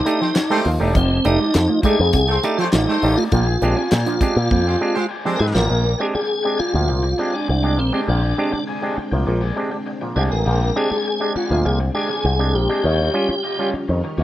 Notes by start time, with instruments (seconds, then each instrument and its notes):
Already playing: tonewheel organ D#4
0.06 clav A3 D4 D#4 G4, muted overdriven electric guitar stroke, muted clean electric guitar stroke, closed hi-hat
0.20 clean electric guitar F3, horn section A3 C4 G4 C5, muted overdriven electric guitar stroke
0.35 overdriven electric guitar D#4 A4 D5, snare, clap, closed hi-hat
0.50 clean electric guitar G#3, horn section A3 C4 G4 C5, clav A3 D4 D#4 G4
0.64 picked electric bass D#2, clav F3, muted overdriven electric guitar stroke, muted clean electric guitar stroke, open hi-hat
0.80 picked electric bass E1, clean electric guitar A3, clav A3 D4 D#4 G4, overdriven electric guitar D#4 A4 D5
0.94 picked electric bass F1, clean electric guitar F3, clav F3, tonewheel organ C4, overdriven electric guitar D#4 A4 D5, kick, closed hi-hat
1.25 picked electric bass F1, clav A3 D4 D#4 G4, tonewheel organ D#4, muted overdriven electric guitar stroke, muted clean electric guitar stroke, closed hi-hat
1.39 clean electric guitar G#3, clav D#4 G4, overdriven electric guitar D#4 A4 D5
1.54 picked electric bass F2, clav D#4 G4, muted overdriven electric guitar stroke, snare, clap, closed hi-hat
1.68 clav F3, clean electric guitar A3, muted overdriven electric guitar stroke
1.83 clean electric guitar G#3, clav A3 D4 D#4 G4, overdriven electric guitar D#4 A4 D5, tonewheel organ G#4, muted picked electric bass stroke, kick, closed hi-hat
1.99 picked electric bass F2, muted overdriven electric guitar stroke
2.13 picked electric bass C2, clean electric guitar C4, muted overdriven electric guitar stroke, kick, closed hi-hat
2.28 horn section A3 C4 G4 C5, muted overdriven electric guitar stroke
2.43 clav A3 D4 D#4 G4, tonewheel organ A4, muted clean electric guitar stroke, closed hi-hat
2.57 clean electric guitar F3, horn section A3 C4 G4 C5, overdriven electric guitar D#4 A4 D5, tonewheel organ F4
2.72 picked electric bass A1, clav F3, overdriven electric guitar D#4 A4 D5, tonewheel organ D#4, snare, clap, closed hi-hat
2.88 clean electric guitar G#3, horn section A3 C4 G4 C5
3.02 picked electric bass A1, clav A3 D4 D#4 G4, muted overdriven electric guitar stroke, muted clean electric guitar stroke, open hi-hat
3.17 clean electric guitar A3, overdriven electric guitar D#4 A4 D5, clav D#4 G4, tonewheel organ F4
3.31 picked electric bass A#1, clav A#2 F3, clean electric guitar A#3, tonewheel organ F4, overdriven electric guitar G#4 D5 G5, kick, closed hi-hat
3.47 muted overdriven electric guitar stroke
3.62 picked electric bass A#1, clav G#3 C4 D4 G4, muted overdriven electric guitar stroke, muted clean electric guitar stroke, closed hi-hat
3.76 clean electric guitar C4, clav D4 G4, overdriven electric guitar G#4 D5 G#5
3.90 picked electric bass A#2, clav D4 G4, overdriven electric guitar G#4 D5 G5, snare, clap, closed hi-hat
4.06 clav A#2 F3, clean electric guitar D4, closed hi-hat
4.21 clav G#3 C4 D4 G4, clean electric guitar C4, muted overdriven electric guitar stroke, muted picked electric bass stroke, kick, closed hi-hat
4.35 picked electric bass A#2, overdriven electric guitar G#4 D5 G5
4.50 picked electric bass F2, clean electric guitar A#3, overdriven electric guitar G#4 D5 G5, kick
4.66 horn section G#3 C4 G4 C5
4.79 clav G#3 C4 D4 G4, muted overdriven electric guitar stroke, muted clean electric guitar stroke
4.95 horn section G#3 C4 G4 C5, clean electric guitar G#3, muted overdriven electric guitar stroke
5.09 overdriven electric guitar G#4 D5 G5
5.25 clean electric guitar F3, horn section G#3 C4 G4 C5, clav G#3 C4 D4 G4
5.36 tonewheel organ G#4 A#4, muted overdriven electric guitar stroke
5.40 picked electric bass G#2
5.54 picked electric bass A1, clav A#2 F3, clean electric guitar F3, overdriven electric guitar G#4 D5 G5, tonewheel organ A#4, snare
5.69 picked electric bass A#1, clav A#2 F3, string machine G#3 C4 D4 G5, overdriven electric guitar G#4 D5 G5
5.98 clav G#3 C4 D4 G4, tonewheel organ G#4, muted overdriven electric guitar stroke
6.14 clav D4 G4, tonewheel organ G#4, overdriven electric guitar G#4 D5 G5, muted picked electric bass stroke
6.28 muted overdriven electric guitar stroke
6.43 clav G#3 C4 D4 G4, muted overdriven electric guitar stroke
6.58 tonewheel organ F4, overdriven electric guitar G#4 D5 G5, muted picked electric bass stroke
6.74 picked electric bass D2, clav A#2 F3, tonewheel organ F4, muted overdriven electric guitar stroke
6.88 picked electric bass C2, clav A#2 F3, muted overdriven electric guitar stroke
7.03 muted overdriven electric guitar stroke
7.18 clav G#3 C4 D4 G4, overdriven electric guitar G#4 D5 G5
7.33 clav D4 G4, tonewheel organ D4, overdriven electric guitar G#4 D5 G#5
7.48 picked electric bass C2, tonewheel organ D4, muted overdriven electric guitar stroke
7.63 clav G#3 C4 D4 G4, muted overdriven electric guitar stroke
7.78 picked electric bass A#1, clav A#2 F3, tonewheel organ C4
7.93 clav G#3 C4 D4 G4, tonewheel organ C4, overdriven electric guitar G#4 D5 G5
8.08 picked electric bass A#1, clav A#2 F3, tonewheel organ D4, overdriven electric guitar G#4 D5 G5
8.38 clav G#3 C4 D4 G4
8.52 clav D4 G4, muted overdriven electric guitar stroke, muted picked electric bass stroke
8.67 overdriven electric guitar G#4 D5 G#5
8.82 clav G#3 C4 D4 G4
8.98 muted picked electric bass stroke, muted overdriven electric guitar stroke
9.12 picked electric bass C2, clav A#2 F3, muted overdriven electric guitar stroke
9.27 picked electric bass A#1, clav A#2 F3, muted overdriven electric guitar stroke
9.41 overdriven electric guitar G#4 D5 G5
9.56 clav G#3 C4 D4 G4, muted overdriven electric guitar stroke
9.71 clav D4 G4, muted overdriven electric guitar stroke
9.86 clav D4 G4, muted overdriven electric guitar stroke
10.01 clav A#2 F3, muted overdriven electric guitar stroke
10.16 picked electric bass C2, clav G#3 C4 D4 G4, tonewheel organ G#4, overdriven electric guitar G#4 D5 G5
10.31 picked electric bass A1, tonewheel organ A#4, muted overdriven electric guitar stroke
10.46 picked electric bass A#1, clav A#2 F3, overdriven electric guitar G#4 D5 G5
10.76 clav G#3 C4 D4 G4, tonewheel organ G#4, muted overdriven electric guitar stroke
10.91 clav D4 G4, tonewheel organ G#4, overdriven electric guitar G#4 D5 G5, muted picked electric bass stroke
11.07 muted overdriven electric guitar stroke
11.20 clav G#3 C4 D4 G4, muted overdriven electric guitar stroke
11.36 tonewheel organ F4, overdriven electric guitar G#4 D5 G5, muted picked electric bass stroke
11.50 picked electric bass D2, clav A#2 F3, tonewheel organ F4, muted overdriven electric guitar stroke
11.65 picked electric bass C2, clav A#2 F3, tonewheel organ G#4, muted overdriven electric guitar stroke
11.80 muted overdriven electric guitar stroke
11.94 clav G#3 C4 D4 G4, tonewheel organ G#4, overdriven electric guitar G#4 D5 G5
12.10 clav D4 G4, overdriven electric guitar G#4 D5 G#5
12.25 picked electric bass C2, muted overdriven electric guitar stroke
12.39 clav G#3 C4 D4 G4, muted overdriven electric guitar stroke
12.54 picked electric bass A#1, clav A#2 F3, tonewheel organ G4
12.69 clav G#3 C4 D4 G4, overdriven electric guitar G#4 D5 G5
12.84 picked electric bass D#2, clav D#3, string machine G3 C#4 F4, overdriven electric guitar F4 G4 C#5
13.14 clav G3 C#4 F4
13.29 clav C#4 F4, muted picked electric bass stroke, muted overdriven electric guitar stroke
13.44 overdriven electric guitar F4 G4 D#5
13.59 clav G3 C#4 F4
13.74 muted picked electric bass stroke, muted overdriven electric guitar stroke
13.88 picked electric bass F2, clav D#3, muted overdriven electric guitar stroke
14.04 clav D#3, muted overdriven electric guitar stroke
14.18 picked electric bass D#2, overdriven electric guitar F4 G4 C#5